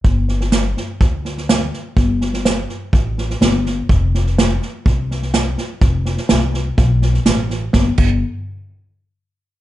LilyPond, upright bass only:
\new Staff \with { instrumentName = "Upright bass" } { \clef bass \time 4/4 \key g \mixolydian \tempo 4 = 125 g,,2 d,2 | g,,2 a,,4 g,,4 | f,,2 c,2 | f,,4 c,4 b,,4 a,,4 |
g,,8 g,,8 r2. | }